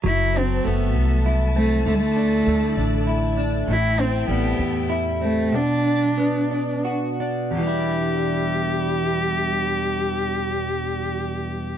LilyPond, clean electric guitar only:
\new Staff \with { instrumentName = "Clean electric guitar" } { \time 6/8 \key e \minor \tempo 4. = 63 fis8 c'8 a4 e'8 c'8 | d8 d'8 a8 d'8 e'8 d'8 | a,8 c'8 g4 e'8 c'8 | b,8 d'8 b8 d'8 fis'8 d'8 |
<e, b, e g d' e'>2.~ | <e, b, e g d' e'>2. | }